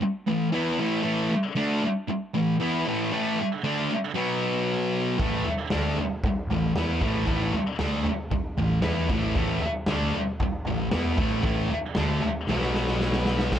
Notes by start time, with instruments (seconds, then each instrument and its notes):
0.01 muted distorted electric guitar stroke
0.27 distorted electric guitar A2 E3
0.52 distorted electric guitar E3 B3 E4
0.79 distorted electric guitar A2 E3 A3
1.03 distorted electric guitar A2 E3 A3
1.31 muted distorted electric guitar stroke
1.55 distorted electric guitar D3 A3 D4
1.83 muted distorted electric guitar stroke
2.08 muted distorted electric guitar stroke
2.34 distorted electric guitar A2 E3
2.60 distorted electric guitar E3 B3 E4
2.86 distorted electric guitar A2 E3 A3
3.12 distorted electric guitar A2 E3 A3
3.40 muted distorted electric guitar stroke
3.64 distorted electric guitar D3 A3 D4
3.91 muted distorted electric guitar stroke
4.15 distorted electric guitar B2 F#3 B3
5.18 picked electric bass A1, distorted electric guitar A2 E3 A3, kick, floor tom
5.46 muted distorted electric guitar stroke, muted picked electric bass stroke, floor tom
5.70 picked electric bass D2, distorted electric guitar D3 A3 D4, snare, floor tom
5.97 muted picked electric bass stroke, muted distorted electric guitar stroke, floor tom
6.24 muted picked electric bass stroke, muted distorted electric guitar stroke, kick, floor tom
6.47 picked electric bass A1, floor tom
6.51 distorted electric guitar A2 E3
6.75 picked electric bass E2, distorted electric guitar E3 B3 E4, snare, floor tom
7.01 picked electric bass A1, distorted electric guitar A2 E3 A3, kick, floor tom
7.26 picked electric bass A1, distorted electric guitar A2 E3 A3, kick, floor tom
7.52 muted distorted electric guitar stroke, muted picked electric bass stroke, floor tom
7.79 picked electric bass D2, distorted electric guitar D3 A3 D4, snare, floor tom
8.04 muted distorted electric guitar stroke, muted picked electric bass stroke, floor tom
8.31 muted distorted electric guitar stroke, muted picked electric bass stroke, kick, floor tom
8.58 picked electric bass A1, distorted electric guitar A2 E3, floor tom
8.82 picked electric bass E2, distorted electric guitar E3 B3 E4, snare, floor tom
9.08 picked electric bass A1, distorted electric guitar A2 E3 A3, kick, floor tom
9.35 picked electric bass A1, distorted electric guitar A2 E3 A3, kick, floor tom
9.61 muted picked electric bass stroke, muted distorted electric guitar stroke, floor tom
9.86 picked electric bass D2, distorted electric guitar D3 A3 D4, snare, floor tom
10.14 muted picked electric bass stroke, muted distorted electric guitar stroke, floor tom
10.40 muted picked electric bass stroke, muted distorted electric guitar stroke, kick, floor tom
10.65 picked electric bass A1, distorted electric guitar A2 E3, floor tom
10.91 picked electric bass E2, distorted electric guitar E3 B3 E4, snare, floor tom
11.17 picked electric bass A1, distorted electric guitar A2 E3 A3, kick, floor tom
11.43 picked electric bass A1, distorted electric guitar A2 E3 A3, kick, floor tom
11.68 muted picked electric bass stroke, muted distorted electric guitar stroke, floor tom
11.95 picked electric bass D2, distorted electric guitar D3 A3 D4, snare, floor tom
12.21 muted picked electric bass stroke, muted distorted electric guitar stroke, floor tom
12.47 picked electric bass B1, distorted electric guitar B2 F#3, snare
12.52 distorted electric guitar B3
12.61 snare
12.74 snare
12.87 snare
13.01 snare
13.12 snare
13.25 snare
13.39 snare
13.52 picked electric bass C2, distorted electric guitar C3 G3 C4, kick, snare, crash